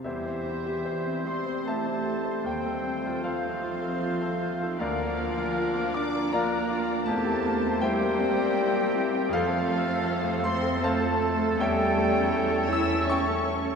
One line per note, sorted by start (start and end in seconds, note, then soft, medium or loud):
0.04 2.41 E2 medium
0.04 0.74 E2 soft
0.04 1.24 E3 medium
0.04 2.42 G3 soft
0.04 0.24 G3 soft
0.04 2.42 C4 soft
0.04 0.25 C4 soft
0.04 0.65 G4 soft
0.04 0.24 C5 soft
0.04 2.42 C5 medium
0.04 4.78 C5 soft
0.04 1.23 E5 medium
0.04 1.24 E5 medium
0.04 1.29 E5 medium
0.26 0.47 C4 soft
0.26 0.59 C5 soft
0.46 0.79 C4 soft
0.46 0.68 E4 soft
0.66 0.99 G4 soft
0.66 0.88 G4 soft
0.85 1.19 C5 soft
0.90 1.09 E4 soft
1.06 1.39 C4 soft
1.11 1.29 C4 soft
1.25 1.67 C4 medium
1.25 1.58 G4 soft
1.25 1.64 C6 medium
1.25 1.69 C6 medium
1.25 1.68 C6 medium
1.30 1.49 G3 soft
1.46 1.68 C4 soft
1.46 1.67 C5 soft
1.66 2.45 A3 medium
1.66 1.88 E4 soft
1.66 1.98 G4 soft
1.66 1.84 C5 soft
1.66 2.42 E5 soft
1.66 2.46 A5 medium
1.66 2.42 A5 medium
1.66 2.46 A5 medium
1.86 2.06 G4 soft
1.86 2.18 C5 soft
2.05 2.26 E4 soft
2.05 2.37 G4 soft
2.25 2.45 C4 soft
2.25 2.45 C5 soft
2.44 4.76 D#2 medium
2.44 3.11 D#2 soft
2.44 3.22 G3 medium
2.44 3.22 G3 soft
2.44 3.22 A3 medium
2.44 2.64 C4 soft
2.44 3.23 C4 soft
2.44 3.23 C5 soft
2.44 3.20 G5 medium
2.44 3.29 G5 medium
2.50 3.25 G5 soft
2.65 2.85 D#4 soft
2.65 2.97 A4 soft
2.84 3.16 C4 soft
2.84 3.04 F4 soft
3.04 3.36 F4 soft
3.04 3.24 A4 soft
3.22 4.79 F3 medium
3.22 4.77 A3 medium
3.22 4.77 C4 medium
3.22 3.44 F4 soft
3.22 3.55 A4 soft
3.22 4.81 C5 medium
3.22 4.77 C5 soft
3.22 4.77 F5 medium
3.22 4.79 F5 medium
3.27 4.81 F5 medium
3.43 3.75 C4 soft
3.43 3.63 D#4 soft
3.63 3.83 C4 soft
3.63 3.94 F4 soft
3.81 4.02 D#4 soft
3.81 4.13 A4 soft
4.02 4.34 F4 soft
4.02 4.22 F4 soft
4.21 4.53 A4 soft
4.21 4.42 A4 soft
4.41 4.61 F4 soft
4.41 4.73 F4 soft
4.62 4.81 D#4 soft
4.62 4.81 A4 soft
4.80 5.44 D2 medium
4.80 7.03 D2 medium
4.80 5.92 F3 medium
4.80 6.29 A#3 medium
4.80 5.93 A#3 medium
4.80 6.16 D4 medium
4.80 6.16 A#4 medium
4.80 4.98 A#4 medium
4.80 7.03 D5 medium
4.80 5.91 D5 soft
4.80 5.91 F5 medium
4.80 5.92 F5 medium
4.80 5.97 F5 medium
4.99 5.19 D4 soft
4.99 5.30 A#4 medium
5.17 5.48 A#3 medium
5.17 5.37 F4 soft
5.37 5.68 F4 medium
5.37 5.57 A#4 soft
5.57 5.76 F4 medium
5.57 5.88 A#4 medium
5.75 6.06 A#3 soft
5.75 5.95 D4 medium
5.94 6.14 A#3 medium
5.94 6.33 D4 medium
5.94 6.32 D4 medium
5.94 6.26 F4 medium
5.94 6.30 D6 medium
5.94 6.33 D6 medium
5.94 6.34 D6 medium
6.15 6.34 D4 medium
6.15 6.44 A#4 medium
6.31 7.07 A#3 medium
6.31 6.80 A#3 medium
6.31 7.07 A#3 medium
6.31 6.80 D4 medium
6.31 6.52 F4 medium
6.31 6.63 F4 medium
6.31 6.80 A#4 medium
6.31 7.04 D5 medium
6.31 7.04 F5 medium
6.31 7.03 A#5 medium
6.31 7.07 A#5 medium
6.31 6.81 A#5 medium
6.51 6.81 A#4 medium
6.51 6.71 A#4 medium
6.70 7.00 F4 medium
6.70 6.89 F4 medium
6.89 7.07 D4 soft
6.89 7.09 A#4 medium
7.06 7.70 E2 medium
7.06 9.29 E2 medium
7.06 7.82 A3 medium
7.06 7.81 A3 medium
7.06 7.25 A#3 medium
7.06 7.79 A#3 medium
7.06 7.79 C4 medium
7.06 7.78 G4 medium
7.06 9.31 C5 medium
7.06 7.78 A5 medium
7.06 7.79 A5 medium
7.06 7.81 A5 medium
7.24 7.45 C4 medium
7.24 7.56 G4 medium
7.45 7.76 A#3 medium
7.45 7.64 E4 medium
7.63 7.95 C4 medium
7.63 7.83 G4 medium
7.81 9.33 G3 medium
7.81 9.16 G3 medium
7.81 9.30 A#3 medium
7.81 9.29 C4 medium
7.81 8.01 E4 medium
7.81 9.30 G4 medium
7.81 8.13 G4 medium
7.81 9.29 C5 medium
7.81 9.29 E5 medium
7.81 9.28 G5 medium
7.81 9.33 G5 medium
7.81 9.30 G5 medium
8.00 8.31 A#3 medium
8.00 8.20 C4 medium
8.20 8.38 A#3 medium
8.20 8.50 C4 medium
8.37 8.57 C4 medium
8.37 8.68 G4 medium
8.56 8.88 C4 medium
8.56 8.75 E4 medium
8.74 8.94 G4 medium
8.74 9.06 G4 medium
8.94 9.25 C4 medium
8.94 9.13 E4 medium
9.13 9.33 C4 medium
9.13 9.32 G4 medium
9.29 11.54 F2 medium
9.29 10.43 F3 medium
9.29 11.55 C5 medium
9.29 10.47 F5 medium
9.29 10.46 F5 medium
9.33 11.56 F2 medium
9.33 10.44 F3 medium
9.33 13.75 A3 medium
9.33 11.63 C4 medium
9.33 13.67 A4 medium
9.33 13.75 A4 medium
9.33 9.46 A4 medium
9.33 10.43 C5 medium
9.33 10.42 F5 medium
9.47 9.80 A4 medium
9.67 9.99 A3 medium
9.86 10.18 C4 medium
10.04 10.36 A4 medium
10.24 10.56 A3 medium
10.44 10.75 C4 medium
10.44 10.83 C4 medium
10.44 10.84 C4 medium
10.44 10.80 C6 medium
10.44 10.86 C6 medium
10.44 10.83 C6 medium
10.62 10.94 A4 medium
10.81 11.59 A3 medium
10.81 11.60 A3 medium
10.81 11.13 C4 medium
10.81 11.56 C5 medium
10.81 11.60 A5 medium
10.81 11.56 A5 medium
10.81 11.62 A5 medium
10.85 11.56 F5 medium
11.00 11.32 A4 medium
11.20 11.51 C4 medium
11.38 11.58 A4 medium
11.57 13.75 E2 medium
11.57 12.67 G3 loud
11.57 12.68 G3 medium
11.57 13.67 C#4 medium
11.57 13.75 C#5 medium
11.57 12.69 G5 medium
11.57 12.70 G5 medium
11.57 12.66 G5 medium
11.61 12.67 C#5 medium
11.61 12.67 E5 medium
11.77 12.07 A4 medium
11.97 12.26 A3 medium
12.16 12.45 C#4 medium
12.34 12.63 A4 medium
12.51 12.81 A3 medium
12.68 12.99 C#4 medium
12.68 13.07 E4 medium
12.68 13.07 E6 medium
12.68 13.11 E6 medium
12.73 13.06 E6 medium
12.88 13.19 A4 medium
13.06 13.75 C#4 medium
13.06 13.38 C#4 medium
13.06 13.75 C#4 medium
13.06 13.75 C#6 medium
13.06 13.58 C#6 medium
13.06 13.75 C#6 medium
13.11 13.75 G5 medium
13.11 13.75 A5 medium
13.28 13.58 A4 medium
13.46 13.75 C#4 medium
13.65 13.75 A4 medium